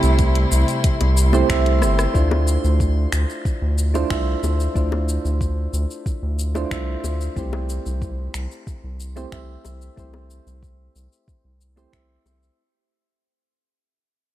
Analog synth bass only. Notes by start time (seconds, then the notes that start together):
0.03 C2
0.52 C2
1.01 C2
1.49 C2
1.82 G1
2.15 D2
2.64 D2
3.13 D2
3.62 D2
4.10 C2
4.43 D2
4.76 D2
5.25 D2
5.73 D2
6.23 D2
6.71 C2
7.04 D2
7.36 C2
7.86 C2
8.35 C2
8.84 C2
9.32 C2
9.65 C2
9.98 C2
10.47 C2
10.96 C2
11.44 C2
11.93 C2
12.25 C2